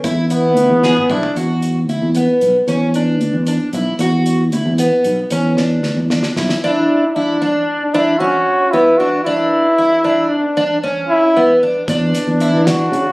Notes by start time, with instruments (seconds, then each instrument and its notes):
0.04 fretless electric bass E2, twelve-string acoustic guitar E4, kick, closed hi-hat
0.30 flugelhorn B3, twelve-string acoustic guitar E4, closed hi-hat
0.57 fretless electric bass D2, closed hi-hat
0.70 fretless electric bass E2
0.83 twelve-string acoustic guitar G#4, snare
0.97 mid tom
1.10 fretless electric bass B1, flugelhorn D4, twelve-string acoustic guitar E4, kick
1.23 floor tom
1.36 fretless electric bass E2, twelve-string acoustic guitar F#4, closed hi-hat
1.62 closed hi-hat
1.88 fretless electric bass D2, twelve-string acoustic guitar E4, closed hi-hat
2.02 fretless electric bass E2
2.15 twelve-string acoustic guitar B3, closed hi-hat
2.41 fretless electric bass B1, closed hi-hat
2.67 fretless electric bass E2, twelve-string acoustic guitar C#4, closed hi-hat
2.94 twelve-string acoustic guitar D4, closed hi-hat
3.21 fretless electric bass D2, closed hi-hat
3.34 fretless electric bass E2
3.47 twelve-string acoustic guitar D4, closed hi-hat
3.73 fretless electric bass B1, twelve-string acoustic guitar E4, closed hi-hat
3.99 fretless electric bass E2, twelve-string acoustic guitar F#4, closed hi-hat
4.26 closed hi-hat
4.52 fretless electric bass D2, twelve-string acoustic guitar E4, closed hi-hat
4.66 fretless electric bass E2
4.78 twelve-string acoustic guitar B3, closed hi-hat
5.04 fretless electric bass B1, closed hi-hat
5.30 fretless electric bass E2, twelve-string acoustic guitar C#4, closed hi-hat
5.57 twelve-string acoustic guitar D4, snare
5.83 fretless electric bass D2, snare
5.96 fretless electric bass E2
6.10 twelve-string acoustic guitar D4, snare
6.23 snare
6.36 fretless electric bass B1, twelve-string acoustic guitar E4, snare
6.49 snare
6.63 twelve-string acoustic guitar D4, flugelhorn E4
7.15 flugelhorn D4, twelve-string acoustic guitar E4
7.42 twelve-string acoustic guitar D4
7.94 twelve-string acoustic guitar D4, flugelhorn E4
8.19 twelve-string acoustic guitar C#4, flugelhorn F#4
8.71 twelve-string acoustic guitar B3, flugelhorn E4
8.98 twelve-string acoustic guitar D4, flugelhorn F#4
9.23 twelve-string acoustic guitar D4, flugelhorn E4
9.78 twelve-string acoustic guitar E4
10.04 twelve-string acoustic guitar D4
10.29 flugelhorn D4
10.57 twelve-string acoustic guitar D4
10.84 twelve-string acoustic guitar C#4
11.08 flugelhorn E4
11.37 twelve-string acoustic guitar B3
11.63 twelve-string acoustic guitar D4
11.88 fretless electric bass E2, flugelhorn D4, twelve-string acoustic guitar D4, kick, closed hi-hat
12.15 snare, closed hi-hat
12.27 fretless electric bass E2
12.40 twelve-string acoustic guitar E4, closed hi-hat
12.54 fretless electric bass E3
12.66 twelve-string acoustic guitar D4, flugelhorn F#4, snare, closed hi-hat
12.92 fretless electric bass C#3, closed hi-hat